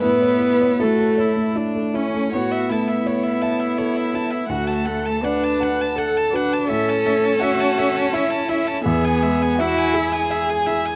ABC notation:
X:1
M:3/4
L:1/16
Q:1/4=83
K:A
V:1 name="Viola"
E4 F2 E2 D2 C2 | c e a e c e a e c e a e | f a f a f a f a f a f a | e a e a e a e a e a e a |
e g e g e g e g e g e g |]
V:2 name="Violin"
B4 A4 z4 | F2 E2 E8 | F2 A2 B4 A2 B2 | A4 F4 E4 |
G4 F2 G6 |]
V:3 name="Upright piano"
A,, c B c E A c A, E A, E A, | A,,2 A,2 c2 e2 A2 E2 | D,,2 A,2 d2 f2 A2 F2 | A,,2 A,2 e2 A2 e2 E2 |
E,,2 G,2 e2 G2 e2 E2 |]
V:4 name="Cello"
B,4 A,4 z2 C2 | B,12 | A,4 D4 z2 D2 | C12 |
B,4 E4 z4 |]